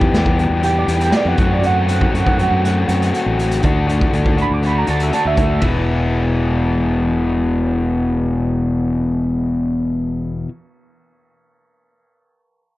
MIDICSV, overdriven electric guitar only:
0, 0, Header, 1, 2, 480
1, 0, Start_track
1, 0, Tempo, 498339
1, 1580, Time_signature, 4, 2, 24, 8
1, 12305, End_track
2, 0, Start_track
2, 0, Title_t, "Overdriven electric guitar"
2, 0, Program_c, 0, 29
2, 0, Note_on_c, 0, 40, 75
2, 0, Note_on_c, 0, 47, 78
2, 0, Note_on_c, 0, 52, 60
2, 0, Note_on_c, 0, 55, 63
2, 0, Note_on_c, 0, 59, 63
2, 0, Note_on_c, 0, 67, 71
2, 135, Note_off_c, 0, 40, 0
2, 135, Note_off_c, 0, 52, 0
2, 140, Note_off_c, 0, 47, 0
2, 147, Note_off_c, 0, 55, 0
2, 147, Note_on_c, 0, 52, 59
2, 157, Note_off_c, 0, 59, 0
2, 159, Note_on_c, 0, 55, 66
2, 161, Note_off_c, 0, 67, 0
2, 168, Note_on_c, 0, 59, 66
2, 172, Note_on_c, 0, 67, 68
2, 370, Note_off_c, 0, 67, 0
2, 379, Note_off_c, 0, 55, 0
2, 380, Note_off_c, 0, 59, 0
2, 382, Note_on_c, 0, 67, 72
2, 387, Note_off_c, 0, 52, 0
2, 390, Note_on_c, 0, 55, 69
2, 392, Note_on_c, 0, 59, 63
2, 398, Note_on_c, 0, 52, 70
2, 407, Note_on_c, 0, 47, 63
2, 410, Note_on_c, 0, 40, 50
2, 589, Note_off_c, 0, 52, 0
2, 600, Note_on_c, 0, 52, 64
2, 601, Note_off_c, 0, 55, 0
2, 611, Note_off_c, 0, 59, 0
2, 613, Note_on_c, 0, 55, 72
2, 621, Note_off_c, 0, 67, 0
2, 623, Note_on_c, 0, 59, 73
2, 632, Note_on_c, 0, 67, 73
2, 838, Note_off_c, 0, 67, 0
2, 845, Note_off_c, 0, 59, 0
2, 849, Note_on_c, 0, 67, 78
2, 852, Note_off_c, 0, 55, 0
2, 857, Note_off_c, 0, 52, 0
2, 857, Note_on_c, 0, 59, 73
2, 861, Note_off_c, 0, 47, 0
2, 864, Note_on_c, 0, 55, 71
2, 866, Note_off_c, 0, 40, 0
2, 869, Note_on_c, 0, 52, 74
2, 873, Note_on_c, 0, 47, 60
2, 878, Note_on_c, 0, 40, 55
2, 1082, Note_off_c, 0, 52, 0
2, 1094, Note_on_c, 0, 52, 65
2, 1096, Note_off_c, 0, 55, 0
2, 1101, Note_off_c, 0, 59, 0
2, 1107, Note_on_c, 0, 55, 66
2, 1109, Note_off_c, 0, 67, 0
2, 1113, Note_on_c, 0, 59, 76
2, 1120, Note_on_c, 0, 67, 77
2, 1321, Note_off_c, 0, 67, 0
2, 1322, Note_off_c, 0, 52, 0
2, 1324, Note_on_c, 0, 66, 80
2, 1329, Note_off_c, 0, 55, 0
2, 1330, Note_off_c, 0, 59, 0
2, 1332, Note_off_c, 0, 47, 0
2, 1334, Note_off_c, 0, 40, 0
2, 1334, Note_on_c, 0, 60, 76
2, 1347, Note_on_c, 0, 57, 68
2, 1355, Note_on_c, 0, 54, 70
2, 1550, Note_off_c, 0, 54, 0
2, 1554, Note_on_c, 0, 54, 71
2, 1564, Note_off_c, 0, 57, 0
2, 1568, Note_on_c, 0, 57, 86
2, 1569, Note_off_c, 0, 60, 0
2, 1580, Note_on_c, 0, 60, 80
2, 1584, Note_off_c, 0, 66, 0
2, 1588, Note_on_c, 0, 66, 91
2, 1796, Note_off_c, 0, 66, 0
2, 1799, Note_on_c, 0, 66, 74
2, 1803, Note_off_c, 0, 60, 0
2, 1815, Note_on_c, 0, 60, 66
2, 1828, Note_off_c, 0, 57, 0
2, 1832, Note_on_c, 0, 57, 54
2, 2040, Note_off_c, 0, 54, 0
2, 2044, Note_on_c, 0, 54, 71
2, 2056, Note_off_c, 0, 60, 0
2, 2058, Note_off_c, 0, 57, 0
2, 2062, Note_on_c, 0, 57, 61
2, 2068, Note_on_c, 0, 60, 67
2, 2073, Note_off_c, 0, 66, 0
2, 2077, Note_on_c, 0, 66, 78
2, 2290, Note_off_c, 0, 66, 0
2, 2294, Note_on_c, 0, 66, 76
2, 2297, Note_off_c, 0, 60, 0
2, 2308, Note_on_c, 0, 60, 67
2, 2313, Note_off_c, 0, 57, 0
2, 2316, Note_on_c, 0, 57, 59
2, 2323, Note_off_c, 0, 54, 0
2, 2327, Note_on_c, 0, 54, 60
2, 2534, Note_off_c, 0, 54, 0
2, 2542, Note_off_c, 0, 57, 0
2, 2546, Note_on_c, 0, 54, 64
2, 2553, Note_on_c, 0, 57, 74
2, 2556, Note_off_c, 0, 60, 0
2, 2559, Note_off_c, 0, 66, 0
2, 2567, Note_on_c, 0, 60, 71
2, 2571, Note_on_c, 0, 66, 64
2, 2762, Note_off_c, 0, 66, 0
2, 2773, Note_off_c, 0, 60, 0
2, 2774, Note_on_c, 0, 66, 74
2, 2782, Note_off_c, 0, 57, 0
2, 2785, Note_on_c, 0, 60, 69
2, 2790, Note_off_c, 0, 54, 0
2, 2793, Note_on_c, 0, 57, 60
2, 2801, Note_on_c, 0, 54, 54
2, 2994, Note_off_c, 0, 54, 0
2, 3004, Note_off_c, 0, 57, 0
2, 3005, Note_on_c, 0, 54, 64
2, 3014, Note_off_c, 0, 60, 0
2, 3015, Note_on_c, 0, 57, 79
2, 3022, Note_off_c, 0, 66, 0
2, 3025, Note_on_c, 0, 60, 68
2, 3033, Note_on_c, 0, 66, 69
2, 3239, Note_off_c, 0, 66, 0
2, 3250, Note_on_c, 0, 66, 60
2, 3255, Note_off_c, 0, 60, 0
2, 3266, Note_off_c, 0, 57, 0
2, 3266, Note_on_c, 0, 60, 53
2, 3277, Note_on_c, 0, 57, 52
2, 3478, Note_off_c, 0, 54, 0
2, 3481, Note_off_c, 0, 66, 0
2, 3484, Note_off_c, 0, 57, 0
2, 3486, Note_on_c, 0, 50, 70
2, 3489, Note_off_c, 0, 60, 0
2, 3495, Note_on_c, 0, 57, 83
2, 3504, Note_on_c, 0, 62, 75
2, 3516, Note_on_c, 0, 66, 88
2, 3719, Note_off_c, 0, 66, 0
2, 3731, Note_on_c, 0, 66, 66
2, 3737, Note_off_c, 0, 62, 0
2, 3748, Note_off_c, 0, 57, 0
2, 3748, Note_on_c, 0, 62, 58
2, 3760, Note_on_c, 0, 57, 56
2, 3952, Note_off_c, 0, 50, 0
2, 3963, Note_on_c, 0, 50, 57
2, 3965, Note_off_c, 0, 57, 0
2, 3973, Note_off_c, 0, 62, 0
2, 3977, Note_on_c, 0, 57, 64
2, 3983, Note_off_c, 0, 66, 0
2, 3985, Note_on_c, 0, 62, 62
2, 3995, Note_on_c, 0, 66, 64
2, 4201, Note_off_c, 0, 66, 0
2, 4211, Note_off_c, 0, 62, 0
2, 4212, Note_on_c, 0, 66, 64
2, 4221, Note_off_c, 0, 57, 0
2, 4223, Note_on_c, 0, 62, 57
2, 4224, Note_off_c, 0, 50, 0
2, 4232, Note_on_c, 0, 57, 58
2, 4236, Note_on_c, 0, 50, 55
2, 4436, Note_off_c, 0, 50, 0
2, 4447, Note_on_c, 0, 50, 59
2, 4453, Note_off_c, 0, 57, 0
2, 4458, Note_off_c, 0, 62, 0
2, 4465, Note_on_c, 0, 57, 55
2, 4470, Note_off_c, 0, 66, 0
2, 4470, Note_on_c, 0, 62, 62
2, 4481, Note_on_c, 0, 66, 75
2, 4686, Note_off_c, 0, 66, 0
2, 4693, Note_off_c, 0, 62, 0
2, 4697, Note_on_c, 0, 66, 78
2, 4705, Note_off_c, 0, 57, 0
2, 4705, Note_on_c, 0, 62, 54
2, 4715, Note_off_c, 0, 50, 0
2, 4716, Note_on_c, 0, 57, 57
2, 4726, Note_on_c, 0, 50, 61
2, 4921, Note_off_c, 0, 50, 0
2, 4932, Note_on_c, 0, 50, 64
2, 4933, Note_off_c, 0, 57, 0
2, 4942, Note_off_c, 0, 62, 0
2, 4944, Note_on_c, 0, 57, 58
2, 4949, Note_off_c, 0, 66, 0
2, 4954, Note_on_c, 0, 62, 68
2, 4960, Note_on_c, 0, 66, 74
2, 5146, Note_off_c, 0, 66, 0
2, 5158, Note_on_c, 0, 66, 52
2, 5168, Note_off_c, 0, 62, 0
2, 5178, Note_off_c, 0, 57, 0
2, 5179, Note_on_c, 0, 62, 60
2, 5190, Note_on_c, 0, 57, 52
2, 5394, Note_off_c, 0, 66, 0
2, 5402, Note_off_c, 0, 50, 0
2, 5403, Note_on_c, 0, 40, 74
2, 5405, Note_off_c, 0, 62, 0
2, 5410, Note_off_c, 0, 57, 0
2, 5410, Note_on_c, 0, 47, 79
2, 5414, Note_on_c, 0, 52, 73
2, 5423, Note_on_c, 0, 56, 69
2, 5431, Note_on_c, 0, 59, 81
2, 5436, Note_on_c, 0, 64, 89
2, 10085, Note_off_c, 0, 40, 0
2, 10092, Note_off_c, 0, 47, 0
2, 10096, Note_off_c, 0, 52, 0
2, 10105, Note_off_c, 0, 56, 0
2, 10113, Note_off_c, 0, 59, 0
2, 10118, Note_off_c, 0, 64, 0
2, 12305, End_track
0, 0, End_of_file